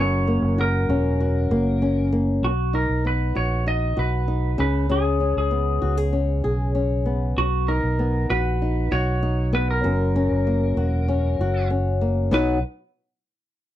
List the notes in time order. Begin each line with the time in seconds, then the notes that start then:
Already playing: F#1 F#2 F#4
0.00 C#5
0.27 A#3
0.42 F#1
0.58 F#4 A#4
0.89 E1 C#4
1.21 F#4
1.50 F#1 A#3
1.82 C#4
2.12 A#3
2.43 B1 F#4
2.73 D#4 A#4
2.89 B1
3.05 B3 B4
3.35 A#1 F#4 C#5
3.66 D#4 D#5
3.97 B1 F#4 B4
4.28 D#4
4.58 C#2 C#3 B4
4.89 C#3 G#4
5.20 C#4
5.37 C#2 G#4
5.51 B3
5.82 C#2 F#4
5.97 G#4
6.13 C#4
6.44 B1 G#4
6.75 C#4
7.06 B3
7.37 B1 F#4
7.68 D#4 A#4
7.83 B1
7.99 B3
8.30 A#1 F#4 B4
8.62 D#4
8.92 B1 F#4 C#5
9.23 D#4
9.53 B3 B4
9.71 A#4
9.84 F#1 F#2
10.16 C#4
10.31 F#1
10.47 A#3
10.77 E1 F#4
11.08 C#4
11.39 F#1 F#4
11.70 C#4
12.01 A#3
12.31 B1 B2 F#3 B3 D#4 F#4 B4